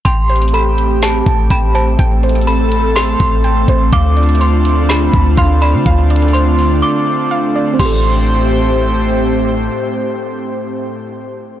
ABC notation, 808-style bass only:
X:1
M:4/4
L:1/16
Q:1/4=124
K:Am
V:1 name="808-style bass" clef=bass
A,,,8- A,,,2 A,,,2 A,,,4 | A,,,8- A,,,2 A,,,4 A,,,2 | D,,8- D,,2 D,,2 D,,3 D, | D,,8 z8 |
A,,,16 | z16 |]